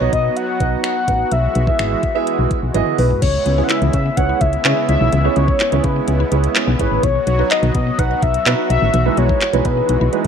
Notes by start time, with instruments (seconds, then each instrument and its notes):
Already playing: analog synth pad F#3 B3 F#4, soft synth lead C#5
0.01 fm bass B1, grand piano B3 D#4 F#4 D#5
0.13 fm bass B2, soft synth lead D#5, kick, closed hi-hat
0.36 soft synth lead F#5, closed hi-hat
0.60 fm bass B1, grand piano B3 D#4 F#4 D#5, kick, closed hi-hat
0.84 soft synth lead F#5, finger snap, closed hi-hat
1.08 fm bass A1, grand piano B3 D#4 F#4 F#5, kick, closed hi-hat
1.32 fm bass B1, analog synth pad E3 G#3, soft synth lead E5, closed hi-hat
1.55 fm bass B1, closed hi-hat
1.67 grand piano B3 E4 G#4 E5, kick
1.79 fm bass G#1, finger snap, closed hi-hat
2.03 kick, closed hi-hat
2.15 grand piano B3 E4 G#4 E5
2.27 closed hi-hat
2.39 fm bass B1
2.51 kick, closed hi-hat
2.63 fm bass B1
2.74 fm bass G#1, grand piano B3 E4 G#4 D#5, closed hi-hat, high tom
2.87 mid tom
2.98 fm bass B1, soft synth lead B4, mid tom, open hi-hat
3.10 floor tom
3.22 fm bass C#2, analog synth pad C#3 G#3 B3 E4, synth arpeggio sound E3, soft synth lead C#5, kick, closed hi-hat, crash
3.34 synth arpeggio sound G#3
3.46 fm bass C#2, synth arpeggio sound B3, soft synth lead C#5, closed hi-hat
3.58 grand piano B3 C#4 E4 G#4 C#5, synth arpeggio sound C#4
3.63 soft synth lead F#5
3.69 synth arpeggio sound E4, soft synth lead E5, clap, closed hi-hat
3.82 fm bass C#2, synth arpeggio sound E3, closed hi-hat
3.93 fm bass C#3, soft synth lead E5, kick, closed hi-hat
4.06 synth arpeggio sound B3
4.17 fm bass C#2, grand piano B3 C#4 E4 G#4 C#5, synth arpeggio sound C#4, soft synth lead F#5, kick, closed hi-hat
4.29 synth arpeggio sound E4
4.41 fm bass C#2, soft synth lead E5, kick, closed hi-hat
4.53 closed hi-hat
4.65 fm bass C#3, grand piano B3 C#4 E4 G#4 C#5, clap, closed hi-hat
4.77 synth arpeggio sound C#4
4.89 fm bass C#2, synth arpeggio sound E4, soft synth lead E5, closed hi-hat
5.01 fm bass B1, synth arpeggio sound E3
5.13 fm bass C#2, synth arpeggio sound E3, closed hi-hat
5.24 synth arpeggio sound G#3, grand piano B3 C#4 E4 G#4 C#5
5.36 fm bass C#2, synth arpeggio sound B3, soft synth lead C#5, closed hi-hat
5.48 synth arpeggio sound C#4, kick
5.60 synth arpeggio sound E4, clap, closed hi-hat
5.72 fm bass C#2, synth arpeggio sound E3, grand piano B3 C#4 E4 G#4 C#5, closed hi-hat
5.84 fm bass C#3, soft synth lead B4, kick, closed hi-hat
5.96 synth arpeggio sound B3
6.08 fm bass C#2, synth arpeggio sound C#4, closed hi-hat
6.20 synth arpeggio sound E4
6.32 fm bass C#2, grand piano B3 C#4 E4 G#4 C#5, closed hi-hat
6.44 closed hi-hat
6.56 clap, closed hi-hat
6.67 fm bass B1, synth arpeggio sound C#4
6.79 fm bass G#1, grand piano B3 C#4 E4 G#4 C#5, synth arpeggio sound E4, soft synth lead B4, kick, closed hi-hat
6.91 fm bass A1, synth arpeggio sound E3
7.03 fm bass B1, synth arpeggio sound D#3, analog synth pad F#3 F#4, soft synth lead C#5, kick, closed hi-hat
7.15 synth arpeggio sound F#3
7.27 fm bass B1, synth arpeggio sound B3, soft synth lead C#5, closed hi-hat
7.39 synth arpeggio sound D#4, grand piano D#4 F#4 B4
7.51 synth arpeggio sound D#5, soft synth lead D#5, clap, closed hi-hat
7.63 fm bass B1, synth arpeggio sound D#3, closed hi-hat
7.75 fm bass B2, soft synth lead D#5, kick, closed hi-hat
7.87 synth arpeggio sound B3
7.98 fm bass B1, grand piano D#4 F#4 B4, synth arpeggio sound D#4, soft synth lead F#5, kick, closed hi-hat
8.11 synth arpeggio sound D#5
8.22 fm bass B1, soft synth lead E5, kick, closed hi-hat
8.34 closed hi-hat
8.46 fm bass B2, grand piano D#4 F#4 B4, clap, closed hi-hat
8.58 synth arpeggio sound D#4
8.70 fm bass B1, synth arpeggio sound D#5, soft synth lead E5, closed hi-hat
8.82 fm bass A1, synth arpeggio sound D#3
8.94 fm bass B1, analog synth pad E3 G#3, synth arpeggio sound E3, closed hi-hat
9.06 grand piano G#3 B3 D#4 E4 B4, synth arpeggio sound G#3
9.17 fm bass B1, synth arpeggio sound B3, soft synth lead C#5, closed hi-hat
9.29 synth arpeggio sound D#4, kick
9.41 synth arpeggio sound E4, clap, closed hi-hat
9.53 fm bass B1, synth arpeggio sound E3, grand piano G#3 B3 D#4 E4 B4, closed hi-hat
9.65 fm bass B2, soft synth lead B4, kick, closed hi-hat
9.77 synth arpeggio sound B3
9.89 fm bass B1, synth arpeggio sound D#4, closed hi-hat
10.01 fm bass B1, synth arpeggio sound E4
10.12 grand piano G#3 B3 D#4 E4 B4, closed hi-hat